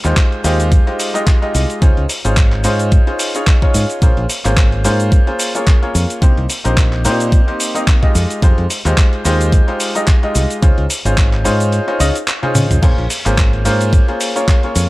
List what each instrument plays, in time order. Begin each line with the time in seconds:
0.04 fingered electric bass D#2, grand piano G#3 D#4 F4 G4 C5, clap, closed hi-hat, cabasa
0.17 kick, clap, closed hi-hat, cabasa
0.32 closed hi-hat
0.44 fingered electric bass D#2, grand piano G#3 D#4 F4 G4 C5, open hi-hat, cabasa
0.60 closed hi-hat, cabasa
0.72 kick, closed hi-hat, cabasa
0.87 grand piano G#3 D#4 F4 G4 C5, closed hi-hat
1.00 open hi-hat, cabasa
1.14 grand piano G#3 D#4 F4 G4 D#5, closed hi-hat, cabasa
1.27 kick, clap, closed hi-hat, cabasa
1.42 grand piano G#3 D#4 F4 G4 D#5, closed hi-hat
1.55 fingered electric bass C2, open hi-hat, cabasa
1.70 closed hi-hat, cabasa
1.81 fingered electric bass C#2, grand piano C#4 D#4 F4 G#4 C5, kick, closed hi-hat, cabasa
1.97 fingered electric bass C#2, closed hi-hat
2.09 open hi-hat, cabasa
2.24 fingered electric bass G#1, grand piano C#4 D#4 F4 G#4 C5, closed hi-hat, cabasa
2.37 kick, clap, closed hi-hat, cabasa
2.52 clap, closed hi-hat
2.64 fingered electric bass G#2, grand piano C#4 D#4 F4 G#4 C5, open hi-hat, cabasa
2.79 closed hi-hat, cabasa
2.92 kick, closed hi-hat, cabasa
3.07 grand piano C#4 D#4 F4 G#4 C5, closed hi-hat
3.19 open hi-hat, cabasa
3.35 grand piano C#4 D#4 F4 G#4 C#5, closed hi-hat, cabasa
3.47 kick, clap, closed hi-hat, cabasa
3.62 grand piano C#4 D#4 F4 G#4 C#5, kick, closed hi-hat
3.74 fingered electric bass G#2, open hi-hat, cabasa
3.90 closed hi-hat, cabasa
4.02 fingered electric bass A#1, grand piano A#3 C#4 F4 G#4 C5, kick, closed hi-hat, cabasa
4.17 fingered electric bass A#1, closed hi-hat
4.29 open hi-hat, cabasa
4.45 fingered electric bass G#1, grand piano A#3 C#4 F4 G#4 C5, clap, closed hi-hat, cabasa
4.57 kick, clap, closed hi-hat, cabasa
4.72 closed hi-hat
4.84 fingered electric bass G#2, grand piano A#3 C#4 F4 G#4 C5, open hi-hat, cabasa
5.00 closed hi-hat, cabasa
5.12 kick, closed hi-hat, cabasa
5.27 grand piano A#3 C#4 F4 G#4 C5, closed hi-hat
5.39 open hi-hat, cabasa
5.55 grand piano A#3 C#4 F4 G#4 C#5, closed hi-hat, cabasa
5.67 kick, clap, closed hi-hat, cabasa
5.82 grand piano A#3 C#4 F4 G#4 C#5, closed hi-hat
5.95 fingered electric bass F2, open hi-hat, cabasa
6.10 closed hi-hat, cabasa
6.22 fingered electric bass C2, grand piano A#3 C4 D#4 G4 C5, kick, closed hi-hat, cabasa
6.37 fingered electric bass C2, closed hi-hat
6.50 open hi-hat, cabasa
6.64 fingered electric bass A#1, grand piano A#3 C4 D#4 G4 C5, closed hi-hat, cabasa
6.77 kick, clap, closed hi-hat, cabasa
6.93 clap, closed hi-hat
7.05 fingered electric bass A#2, grand piano A#3 C4 D#4 G4 C5, open hi-hat, cabasa
7.20 closed hi-hat, cabasa
7.32 kick, closed hi-hat, cabasa
7.47 grand piano A#3 C4 D#4 G4 C5, closed hi-hat
7.60 open hi-hat, cabasa
7.75 grand piano A#3 C4 D#4 G4 D#5, closed hi-hat, cabasa
7.87 kick, clap, closed hi-hat, cabasa
8.02 grand piano G#3 D#4 F4 G4 D#5, kick, closed hi-hat
8.15 fingered electric bass F2, open hi-hat, cabasa
8.30 closed hi-hat, cabasa
8.42 fingered electric bass F2, grand piano G#3 D#4 F4 G4 C5, kick, closed hi-hat, cabasa
8.58 fingered electric bass F2, closed hi-hat
8.70 open hi-hat, cabasa
8.85 fingered electric bass D#2, grand piano G#3 D#4 F4 G4 C5, clap, closed hi-hat, cabasa
8.97 kick, clap, closed hi-hat, cabasa
9.13 closed hi-hat
9.25 fingered electric bass D#2, grand piano G#3 D#4 F4 G4 C5, open hi-hat, cabasa
9.41 closed hi-hat, cabasa
9.52 kick, closed hi-hat, cabasa
9.67 grand piano G#3 D#4 F4 G4 C5, closed hi-hat
9.80 open hi-hat, cabasa
9.95 grand piano G#3 D#4 F4 G4 D#5, closed hi-hat, cabasa
10.07 kick, clap, closed hi-hat, cabasa
10.23 grand piano G#3 D#4 F4 G4 D#5, closed hi-hat
10.35 fingered electric bass C2, open hi-hat, cabasa
10.50 closed hi-hat, cabasa
10.62 fingered electric bass C#2, grand piano C#4 D#4 F4 G#4 C5, kick, closed hi-hat, cabasa
10.78 fingered electric bass C#2, closed hi-hat
10.90 open hi-hat, cabasa
11.05 fingered electric bass G#1, grand piano C#4 D#4 F4 G#4 C5, closed hi-hat, cabasa
11.18 kick, clap, closed hi-hat, cabasa
11.33 clap, closed hi-hat
11.44 fingered electric bass G#2, grand piano C#4 D#4 F4 G#4 C5, open hi-hat, cabasa
11.60 closed hi-hat, cabasa
11.72 closed hi-hat, cabasa
11.87 grand piano C#4 D#4 F4 G#4 C5, closed hi-hat
11.99 fingered electric bass C#2, grand piano C#4 D#4 F4 G#4 D#5, open hi-hat, cabasa
12.15 closed hi-hat, cabasa
12.28 clap, closed hi-hat, cabasa
12.42 grand piano C#4 D#4 F4 G#4 C5, closed hi-hat, high tom
12.55 fingered electric bass C#3, open hi-hat, mid tom, cabasa
12.70 fingered electric bass C#2, closed hi-hat, mid tom, cabasa
12.82 fingered electric bass A#1, grand piano A#3 C#4 F4 G#4 C5, kick, closed hi-hat, crash, ride, cabasa
12.98 fingered electric bass A#1, closed hi-hat
13.10 open hi-hat, ride, cabasa
13.25 fingered electric bass G#1, grand piano A#3 C#4 F4 G#4 C5, clap, closed hi-hat, cabasa
13.38 kick, clap, closed hi-hat, cabasa
13.53 closed hi-hat
13.65 fingered electric bass G#2, grand piano A#3 C#4 F4 G#4 C5, open hi-hat, ride, cabasa
13.81 closed hi-hat, cabasa
13.93 kick, closed hi-hat, ride, cabasa
14.08 grand piano A#3 C#4 F4 G#4 C5, closed hi-hat
14.21 open hi-hat, ride, cabasa
14.35 grand piano A#3 C#4 F4 G#4 C#5, closed hi-hat, cabasa
14.48 kick, clap, closed hi-hat, ride, cabasa
14.63 grand piano A#3 C#4 F4 G#4 C#5, closed hi-hat
14.76 fingered electric bass F2, open hi-hat, ride, cabasa